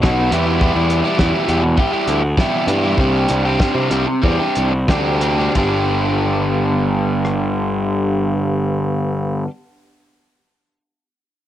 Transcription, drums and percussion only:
0.03 kick, snare
0.32 closed hi-hat
0.61 kick
0.90 closed hi-hat
1.19 kick, snare
1.49 closed hi-hat
1.78 kick
2.08 closed hi-hat
2.38 kick, snare
2.68 closed hi-hat
2.98 kick
3.29 closed hi-hat
3.60 kick, snare
3.91 closed hi-hat
4.23 kick
4.56 closed hi-hat
4.88 kick, snare
5.21 closed hi-hat
5.55 kick, ride
7.25 cross-stick

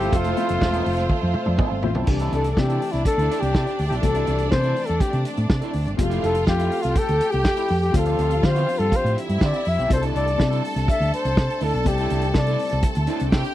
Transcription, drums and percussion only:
0.02 closed hi-hat
0.13 kick, closed hi-hat
0.24 closed hi-hat
0.37 closed hi-hat
0.49 closed hi-hat
0.61 kick, snare
0.73 closed hi-hat
0.86 open hi-hat
0.97 snare, closed hi-hat
1.09 kick, high tom
1.34 mid tom
1.46 mid tom
1.58 kick, mid tom
1.83 floor tom
1.95 floor tom
2.07 kick, crash
2.19 closed hi-hat
2.33 closed hi-hat
2.44 closed hi-hat
2.57 kick, snare
2.70 closed hi-hat
2.82 open hi-hat
2.93 snare, closed hi-hat
3.05 kick, closed hi-hat
3.19 closed hi-hat
3.31 closed hi-hat
3.42 closed hi-hat
3.55 kick, snare
3.67 closed hi-hat
3.79 open hi-hat
3.92 closed hi-hat
4.03 kick, closed hi-hat
4.15 closed hi-hat
4.27 closed hi-hat
4.38 closed hi-hat
4.52 kick, snare
4.63 closed hi-hat
4.76 open hi-hat
4.87 closed hi-hat
5.00 kick, closed hi-hat
5.13 closed hi-hat
5.25 closed hi-hat
5.37 closed hi-hat
5.50 kick, snare
5.62 closed hi-hat
5.73 open hi-hat
5.88 closed hi-hat
5.99 kick, closed hi-hat
6.11 closed hi-hat
6.24 closed hi-hat
6.35 closed hi-hat
6.47 kick, snare
6.59 closed hi-hat
6.71 open hi-hat
6.83 snare, closed hi-hat
6.95 kick, closed hi-hat
7.08 closed hi-hat
7.21 closed hi-hat
7.32 closed hi-hat
7.45 kick, snare
7.57 closed hi-hat
7.68 open hi-hat
7.83 closed hi-hat
7.94 kick, closed hi-hat
8.05 closed hi-hat
8.19 closed hi-hat
8.30 closed hi-hat
8.43 kick, snare
8.56 closed hi-hat
8.69 open hi-hat
8.80 closed hi-hat
8.92 kick, closed hi-hat
9.06 closed hi-hat
9.18 closed hi-hat
9.29 closed hi-hat
9.41 kick, snare
9.54 closed hi-hat
9.65 open hi-hat
9.80 closed hi-hat
9.90 kick, closed hi-hat
10.02 closed hi-hat
10.16 closed hi-hat
10.27 closed hi-hat
10.40 kick, snare
10.52 closed hi-hat
10.65 open hi-hat
10.76 snare, closed hi-hat
10.88 kick, closed hi-hat
11.02 closed hi-hat
11.13 closed hi-hat
11.25 closed hi-hat
11.37 kick, snare
11.50 closed hi-hat
11.60 open hi-hat
11.75 closed hi-hat
11.86 kick, closed hi-hat
11.98 closed hi-hat
12.10 closed hi-hat
12.21 closed hi-hat
12.34 kick, snare
12.47 closed hi-hat
12.59 open hi-hat
12.70 snare, closed hi-hat
12.82 kick, closed hi-hat
12.95 closed hi-hat
13.07 closed hi-hat
13.19 closed hi-hat
13.32 kick, snare
13.44 closed hi-hat

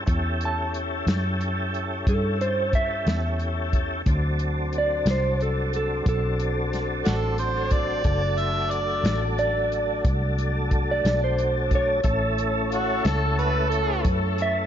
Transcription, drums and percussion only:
0.07 kick, closed hi-hat
0.41 closed hi-hat
0.74 closed hi-hat
1.07 snare, closed hi-hat
1.41 closed hi-hat
1.74 closed hi-hat
2.07 kick, closed hi-hat
2.41 closed hi-hat
2.73 kick, closed hi-hat
3.07 snare, closed hi-hat
3.39 closed hi-hat
3.73 kick, closed hi-hat
4.06 kick, closed hi-hat
4.39 closed hi-hat
4.73 closed hi-hat
5.06 snare, closed hi-hat
5.40 closed hi-hat
5.73 closed hi-hat
6.06 kick, closed hi-hat
6.40 closed hi-hat
6.73 snare, closed hi-hat
7.05 snare, closed hi-hat
7.38 closed hi-hat
7.71 kick, closed hi-hat
8.04 kick, closed hi-hat
8.38 closed hi-hat
8.71 closed hi-hat
9.05 snare, closed hi-hat
9.38 closed hi-hat
9.72 closed hi-hat
10.05 kick, closed hi-hat
10.38 closed hi-hat
10.71 kick, closed hi-hat
11.05 snare, closed hi-hat
11.38 closed hi-hat
11.71 kick, closed hi-hat
12.03 kick, closed hi-hat
12.38 closed hi-hat
12.72 closed hi-hat
13.05 snare, closed hi-hat
13.39 closed hi-hat
13.72 closed hi-hat
14.05 kick, closed hi-hat
14.38 closed hi-hat

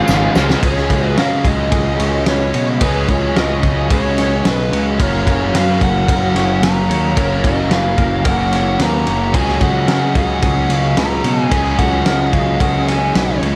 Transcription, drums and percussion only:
0.08 snare, tambourine
0.35 snare, tambourine
0.49 snare, tambourine
0.63 kick, ride
0.77 snare
0.90 kick, ride
1.18 snare, ride
1.45 kick, ride
1.72 kick, ride
2.00 ride
2.26 snare, ride
2.54 ride
2.81 kick, ride
3.08 kick, ride
3.36 snare, ride
3.63 kick, ride
3.90 kick, ride
4.18 snare, ride
4.45 snare, ride
4.73 ride
5.00 kick, ride
5.27 kick, ride
5.55 snare, ride
5.81 kick, ride
6.08 kick, ride
6.36 snare, ride
6.63 snare, ride
6.91 ride
7.17 kick, ride
7.44 kick, ride
7.71 snare, ride
7.98 kick, ride
8.25 kick, ride
8.53 snare, ride
8.80 snare, ride
9.07 ride
9.34 kick, ride
9.48 snare
9.61 kick, ride
9.88 snare, ride
10.15 kick, ride
10.42 kick, ride
10.70 ride
10.97 snare, ride
11.24 ride
11.52 kick, ride
11.79 kick, ride
12.06 snare, ride
12.33 kick, ride
12.60 kick, ride
12.88 snare, ride
13.15 snare, ride
13.43 ride

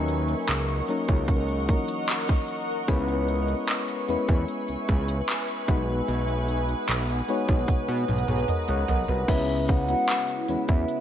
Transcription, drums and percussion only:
0.08 closed hi-hat
0.28 closed hi-hat
0.48 clap, closed hi-hat
0.68 closed hi-hat
0.88 closed hi-hat
1.08 kick, closed hi-hat
1.28 kick, closed hi-hat
1.48 closed hi-hat
1.68 kick, closed hi-hat
1.88 closed hi-hat
2.09 clap, closed hi-hat
2.28 kick, closed hi-hat
2.48 closed hi-hat
2.88 kick, closed hi-hat
3.08 closed hi-hat
3.28 closed hi-hat
3.48 closed hi-hat
3.68 clap, closed hi-hat
3.88 closed hi-hat
4.08 closed hi-hat
4.28 kick, closed hi-hat
4.48 closed hi-hat
4.68 closed hi-hat
4.88 kick, closed hi-hat
5.08 closed hi-hat
5.29 clap, closed hi-hat
5.48 closed hi-hat
5.68 kick, closed hi-hat
6.08 closed hi-hat
6.28 closed hi-hat
6.48 closed hi-hat
6.69 closed hi-hat
6.88 clap, closed hi-hat
7.08 closed hi-hat
7.28 closed hi-hat
7.48 kick, closed hi-hat
7.68 kick, closed hi-hat, high tom
7.88 closed hi-hat
8.08 closed hi-hat, mid tom
8.18 closed hi-hat
8.28 closed hi-hat, mid tom
8.38 closed hi-hat
8.48 closed hi-hat, mid tom
8.68 closed hi-hat
8.88 closed hi-hat, floor tom
9.08 floor tom
9.28 kick, closed hi-hat, crash
9.48 closed hi-hat
9.68 kick, closed hi-hat
9.89 closed hi-hat
10.08 clap, closed hi-hat
10.28 closed hi-hat
10.48 closed hi-hat
10.68 kick, closed hi-hat
10.88 closed hi-hat

